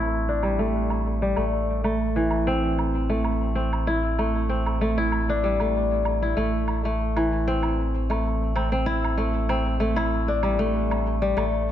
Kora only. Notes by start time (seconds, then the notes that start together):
Already playing: A3 C4 E4
0.29 D4
0.43 G3
0.59 A3
1.22 G3
1.37 A3
1.84 A3
2.16 E3
2.47 C4
3.10 A3
3.55 C4
3.87 E4
4.19 A3
4.49 C4
4.81 A3
4.98 E4
5.29 D4
5.44 G3
5.60 A3
6.22 E4
6.37 A3
6.85 A3
7.17 E3
7.48 C4
8.10 A3
8.56 C4
8.72 C4
8.86 E4
9.18 A3
9.49 C4
9.80 A3
9.96 E4
10.28 D4
10.43 G3
10.59 A3
11.22 G3
11.37 A3